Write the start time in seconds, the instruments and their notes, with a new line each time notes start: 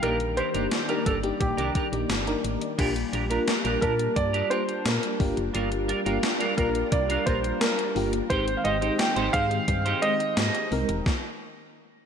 Already playing: string machine G3
0.02 fm bass A#1, string machine D#3 D5, fm electric piano A#3 D4 D#4 G4, clean electric guitar D4 G4 A#4, grand piano A#4, closed hi-hat
0.20 muted clean electric guitar stroke, closed hi-hat
0.37 clean electric guitar D4 G4 A#4, grand piano C5, closed hi-hat
0.54 fm bass G1, fm electric piano A#3 D4 D#4 G4, clean electric guitar D4 G4 A#4, closed hi-hat
0.71 muted clean electric guitar stroke, snare, closed hi-hat
0.88 fm electric piano A#3 D4 D#4 G4, clean electric guitar D4 G4 A#4, grand piano A#4, closed hi-hat
1.06 fm bass G1, clean electric guitar D4 G4 A#4, grand piano A4, kick, closed hi-hat
1.23 fm electric piano A#3 D4 D#4 G4, muted clean electric guitar stroke, closed hi-hat
1.40 fm bass A#1, grand piano G4, muted clean electric guitar stroke, kick, closed hi-hat
1.57 fm bass C2, clean electric guitar D4 G4 A#4, closed hi-hat
1.75 clean electric guitar D4 G4 A#4, kick, closed hi-hat
1.92 fm bass A#1, fm electric piano A#3 D4 D#4 G4, muted clean electric guitar stroke, closed hi-hat
2.09 fm bass G1, muted clean electric guitar stroke, snare, closed hi-hat
2.26 fm electric piano A#3 D4 D#4 A#4, muted clean electric guitar stroke, closed hi-hat
2.44 fm bass A1, closed hi-hat
2.61 muted clean electric guitar stroke, closed hi-hat
2.78 fm bass A#1, string machine G3 A#3 D4, fm electric piano A#3 D4 F4 G4, clean electric guitar D4 G4 A#4, kick, closed hi-hat, crash
2.96 muted clean electric guitar stroke, closed hi-hat
3.13 fm bass A#1, clean electric guitar D4 G4 A#4, closed hi-hat
3.30 fm electric piano A#3 D4 F4 A#4, clean electric guitar D4 G4 A#4, closed hi-hat
3.47 muted clean electric guitar stroke, snare, closed hi-hat
3.64 fm bass A#1, clean electric guitar D4 G4 A#4, closed hi-hat
3.81 fm bass A#2, fm electric piano A#3 D4 F4 A5, clean electric guitar D4 G4 A#4, grand piano A#4, kick, closed hi-hat
3.99 muted clean electric guitar stroke, closed hi-hat
4.16 fm bass G2, grand piano D5, muted clean electric guitar stroke, kick, closed hi-hat
4.33 clean electric guitar D4 G4 A#4, closed hi-hat
4.50 fm electric piano A#3 D4 F4 G4, clean electric guitar D4 G4 A#4, grand piano C5, closed hi-hat
4.68 muted clean electric guitar stroke, closed hi-hat
4.85 fm bass A#2, grand piano A#4, muted clean electric guitar stroke, snare, closed hi-hat
5.02 muted clean electric guitar stroke, closed hi-hat
5.19 fm bass G1, string machine G3 F4 A#4, fm electric piano A#3 D4 F4 G4, kick, open hi-hat
5.37 fm bass F#1, muted clean electric guitar stroke, closed hi-hat
5.54 fm bass G1, clean electric guitar D4 F4 A#4, closed hi-hat
5.71 muted clean electric guitar stroke, closed hi-hat
5.88 clean electric guitar D4 F4 A#4, closed hi-hat
6.05 fm bass G1, fm electric piano A#3 D4 F4 G4, clean electric guitar D4 F4 A#4, closed hi-hat
6.23 muted clean electric guitar stroke, snare, closed hi-hat
6.40 clean electric guitar D4 F4 A#4, closed hi-hat
6.57 fm bass A#1, fm electric piano A#3 D4 F4 G4, clean electric guitar D4 F4 A#4, grand piano A#4, kick, closed hi-hat
6.75 muted clean electric guitar stroke, closed hi-hat
6.92 fm bass C2, grand piano D5, muted clean electric guitar stroke, kick, closed hi-hat
7.09 clean electric guitar D4 F4 A#4, closed hi-hat
7.26 fm bass A#1, fm electric piano A#3 D4 F4 A#4, clean electric guitar D4 F4 A#4, grand piano C5, kick, closed hi-hat
7.44 muted clean electric guitar stroke, closed hi-hat
7.61 grand piano A#4, muted clean electric guitar stroke, snare, closed hi-hat
7.78 muted clean electric guitar stroke, closed hi-hat
7.95 fm bass G1, fm electric piano A#3 D4 F4 G4, open hi-hat
8.13 muted clean electric guitar stroke, closed hi-hat
8.30 fm bass G#1, string machine D#3 C4 G5, fm electric piano G#3 C4 D#4 G4, clean electric guitar D#4 G4 C5, grand piano C5, kick, closed hi-hat
8.47 muted clean electric guitar stroke, closed hi-hat
8.57 grand piano F5
8.64 fm bass G#1, clean electric guitar D#4 G4 C5, grand piano D#5, closed hi-hat
8.81 fm electric piano G#3 C4 D#4 G4, clean electric guitar D#4 G4 C5, closed hi-hat
8.99 grand piano G5, muted clean electric guitar stroke, snare, closed hi-hat
9.16 fm bass G#1, clean electric guitar D#4 G4 C5, closed hi-hat
9.33 fm bass G#2, fm electric piano G#3 C4 D#4 G#4, clean electric guitar D#4 G4 C5, grand piano F5, kick, closed hi-hat
9.51 muted clean electric guitar stroke, closed hi-hat
9.68 fm bass G2, muted clean electric guitar stroke, kick, closed hi-hat
9.85 clean electric guitar D#4 G4 C5, closed hi-hat
10.02 fm electric piano G#3 C4 D#4 G4, clean electric guitar D#4 G4 C5, grand piano D#5, closed hi-hat
10.20 muted clean electric guitar stroke, closed hi-hat
10.37 fm bass G#2, muted clean electric guitar stroke, snare, closed hi-hat
10.54 muted clean electric guitar stroke, closed hi-hat
10.71 fm bass C2, fm electric piano G#3 C4 D#4 A#4, open hi-hat
10.89 fm bass E1, muted clean electric guitar stroke, closed hi-hat
11.06 kick, snare